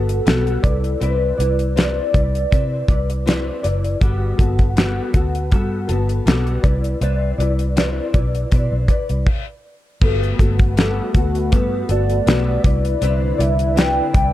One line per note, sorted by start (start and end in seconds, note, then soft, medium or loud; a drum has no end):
0.00 0.19 G1 medium
0.00 0.25 B3 soft
0.00 0.26 F#4 soft
0.00 0.26 A4 medium
0.00 1.04 A4 medium
0.09 closed hi-hat medium
0.26 0.56 B1 medium
0.26 0.63 G3 medium
0.26 0.64 B3 medium
0.26 0.64 F#4 medium
0.26 0.64 A4 medium
0.26 snare loud
0.26 closed hi-hat medium
0.47 closed hi-hat soft
0.63 0.94 C2 medium
0.63 1.00 E4 soft
0.63 1.01 B4 soft
0.63 1.01 D5 medium
0.63 kick medium
0.63 closed hi-hat medium
0.84 closed hi-hat soft
1.00 1.31 C2 medium
1.00 1.38 C4 medium
1.00 1.39 E4 medium
1.00 1.38 B4 medium
1.00 1.78 B4 loud
1.00 1.36 D5 medium
1.00 closed hi-hat medium
1.38 1.99 C2 medium
1.38 1.75 E4 soft
1.38 1.76 B4 soft
1.38 1.76 D5 soft
1.38 closed hi-hat medium
1.59 closed hi-hat soft
1.76 2.14 C4 medium
1.76 2.14 E4 medium
1.76 2.14 B4 medium
1.76 3.64 D5 loud
1.76 2.12 D5 medium
1.76 snare loud
1.76 closed hi-hat medium
2.13 2.44 C2 medium
2.13 2.51 E4 soft
2.13 2.52 B4 soft
2.13 2.51 D5 medium
2.13 kick medium
2.13 closed hi-hat medium
2.35 closed hi-hat soft
2.51 2.82 C3 medium
2.51 2.89 C4 medium
2.51 2.89 E4 medium
2.51 2.89 B4 medium
2.51 2.87 D5 medium
2.51 kick medium
2.51 closed hi-hat medium
2.88 3.49 C2 medium
2.88 3.25 E4 soft
2.88 3.26 B4 soft
2.88 3.26 D5 medium
2.88 kick medium
2.88 closed hi-hat medium
3.10 closed hi-hat medium
3.26 3.63 C4 medium
3.26 3.64 E4 medium
3.26 3.64 B4 medium
3.26 3.62 D5 medium
3.26 snare loud
3.26 closed hi-hat loud
3.63 3.94 F#1 medium
3.63 4.02 E4 soft
3.63 4.02 B4 soft
3.63 4.01 D5 medium
3.63 closed hi-hat medium
3.84 closed hi-hat soft
4.01 4.31 G1 medium
4.01 4.39 G3 medium
4.01 4.39 B3 medium
4.01 4.38 F#4 medium
4.01 4.37 A4 medium
4.01 kick loud
4.01 closed hi-hat medium
4.38 4.99 G1 medium
4.38 4.76 B3 soft
4.38 4.76 F#4 medium
4.38 4.76 A4 medium
4.38 kick medium
4.38 closed hi-hat medium
4.59 kick medium
4.59 closed hi-hat soft
4.76 5.14 G3 medium
4.76 5.14 B3 medium
4.76 5.14 F#4 medium
4.76 5.12 A4 medium
4.76 snare loud
4.76 closed hi-hat medium
5.13 5.52 D2 medium
5.13 5.51 B3 soft
5.13 5.52 F#4 soft
5.13 5.51 A4 medium
5.13 kick medium
5.13 closed hi-hat medium
5.35 closed hi-hat soft
5.51 5.90 G2 medium
5.51 5.89 G3 medium
5.51 5.89 B3 medium
5.51 5.89 F#4 medium
5.51 5.87 A4 medium
5.51 kick medium
5.51 closed hi-hat medium
5.88 6.19 G1 medium
5.88 6.25 B3 soft
5.88 6.26 F#4 soft
5.88 6.26 A4 medium
5.88 closed hi-hat medium
6.09 closed hi-hat soft
6.26 6.56 B1 medium
6.26 6.64 G3 medium
6.26 6.64 B3 medium
6.26 6.64 F#4 medium
6.26 6.64 A4 medium
6.26 snare loud
6.26 closed hi-hat medium
6.47 closed hi-hat soft
6.63 6.94 C2 medium
6.63 7.01 E4 soft
6.63 7.01 B4 medium
6.63 7.01 D5 medium
6.63 kick medium
6.63 closed hi-hat medium
6.84 closed hi-hat soft
7.01 7.31 C2 medium
7.01 7.39 C4 medium
7.01 7.39 E4 medium
7.01 7.39 B4 medium
7.01 7.37 D5 medium
7.01 closed hi-hat medium
7.38 7.99 C2 loud
7.38 7.76 E4 soft
7.38 7.76 B4 medium
7.38 7.76 D5 soft
7.38 closed hi-hat medium
7.59 closed hi-hat soft
7.76 8.14 C4 medium
7.76 8.14 E4 medium
7.76 8.14 B4 medium
7.76 8.12 D5 medium
7.76 snare medium
7.76 closed hi-hat medium
8.14 8.44 B1 medium
8.14 8.51 E4 soft
8.14 8.52 B4 medium
8.14 8.51 D5 medium
8.14 kick medium
8.14 closed hi-hat medium
8.35 closed hi-hat soft
8.51 8.68 B2 medium
8.51 8.89 C4 medium
8.51 8.89 E4 medium
8.51 8.89 B4 medium
8.51 8.88 D5 medium
8.51 kick medium
8.51 closed hi-hat medium
8.72 8.85 B1 medium
8.88 9.28 E4 soft
8.88 9.27 B4 medium
8.88 9.26 D5 medium
8.88 kick medium
8.88 closed hi-hat medium
9.09 9.23 C2 medium
9.09 closed hi-hat soft
9.26 kick loud
9.26 crash medium
10.01 10.32 G1 medium
10.01 10.39 G3 medium
10.01 12.62 A3 medium
10.01 10.39 B3 medium
10.01 12.62 F#4 medium
10.01 10.40 F#4 medium
10.01 10.38 A4 medium
10.01 12.62 B4 medium
10.01 kick loud
10.01 crash medium
10.23 closed hi-hat soft
10.39 10.99 G1 medium
10.39 10.76 B3 soft
10.39 10.77 F#4 soft
10.39 10.77 A4 soft
10.39 10.54 A4 medium
10.39 kick medium
10.39 closed hi-hat medium
10.59 kick medium
10.59 closed hi-hat soft
10.77 11.14 G3 medium
10.77 11.15 B3 medium
10.77 11.15 F#4 medium
10.77 11.55 A4 medium
10.77 11.13 A4 medium
10.77 snare loud
10.77 closed hi-hat medium
11.14 11.53 D2 medium
11.14 11.51 B3 soft
11.14 11.52 F#4 soft
11.14 11.52 A4 medium
11.14 kick medium
11.14 closed hi-hat medium
11.35 closed hi-hat soft
11.51 11.82 G2 medium
11.51 11.89 G3 medium
11.51 11.89 B3 medium
11.51 11.89 F#4 medium
11.51 11.88 A4 medium
11.51 11.90 B4 medium
11.51 kick medium
11.51 closed hi-hat medium
11.89 12.19 G1 medium
11.89 12.26 B3 soft
11.89 12.27 F#4 soft
11.89 12.26 A4 medium
11.89 12.61 D5 loud
11.89 closed hi-hat medium
12.10 closed hi-hat medium
12.26 12.57 B1 medium
12.26 12.64 G3 medium
12.26 12.64 B3 medium
12.26 12.65 F#4 medium
12.26 12.65 A4 medium
12.26 snare loud
12.26 closed hi-hat medium
12.64 12.94 C2 medium
12.64 14.33 D3 medium
12.64 14.33 E4 medium
12.64 13.01 E4 soft
12.64 14.33 B4 medium
12.64 13.02 B4 soft
12.64 13.01 D5 soft
12.64 13.42 D5 loud
12.64 kick loud
12.64 closed hi-hat medium
12.85 closed hi-hat soft
13.01 13.32 C2 medium
13.01 13.39 C4 medium
13.01 13.39 E4 medium
13.01 13.39 B4 medium
13.01 13.37 D5 medium
13.01 closed hi-hat medium
13.38 13.99 C2 medium
13.38 13.75 E4 soft
13.38 13.76 B4 medium
13.38 13.76 D5 medium
13.38 13.80 E5 loud
13.38 closed hi-hat medium
13.59 closed hi-hat soft
13.76 14.14 C4 medium
13.76 14.14 E4 medium
13.76 14.14 B4 medium
13.76 14.12 D5 medium
13.76 14.15 G5 loud
13.76 snare loud
13.76 closed hi-hat medium
14.13 14.33 C2 medium
14.13 14.33 E4 soft
14.13 14.33 B4 medium
14.13 14.33 D5 medium
14.13 14.33 G5 loud
14.13 kick medium
14.13 closed hi-hat medium